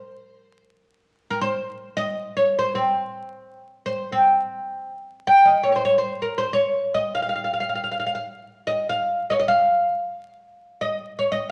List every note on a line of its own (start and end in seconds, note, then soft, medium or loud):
0.00 0.61 C5 medium
1.30 1.41 A#4 medium
1.41 1.96 C5 medium
1.97 2.36 D#5 loud
2.37 2.58 C#5 medium
2.59 2.75 C5 medium
2.75 3.59 C4 medium
3.86 4.12 C5 medium
4.12 4.91 C4 medium
5.27 5.45 G5 medium
5.45 5.63 D#5 medium
5.63 5.71 C#5 medium
5.72 5.85 C5 medium
5.72 5.75 C#5 soft
5.85 5.98 C#5 medium
5.98 6.23 C5 medium
6.22 6.37 A#4 medium
6.38 6.52 C5 medium
6.53 6.94 C#5 medium
6.94 7.14 D#5 medium
7.15 7.21 F5 medium
7.22 7.28 F5 soft
7.29 7.34 F5 medium
7.36 7.43 F5 soft
7.44 7.51 F5 soft
7.54 7.59 F5 soft
7.60 7.66 F5 medium
7.69 7.74 F5 soft
7.75 7.82 F5 soft
7.84 7.89 F5 soft
7.91 7.97 F5 soft
8.00 8.05 F5 soft
8.06 8.12 F5 medium
8.15 8.20 F5 soft
8.67 8.89 D#5 medium
8.89 9.24 F5 medium
9.30 9.35 C#5 medium
9.30 9.32 D#5 medium
9.40 9.45 D#5 medium
9.48 10.35 F5 medium
10.81 11.18 D#5 medium
11.19 11.32 C#5 medium
11.32 11.49 D#5 medium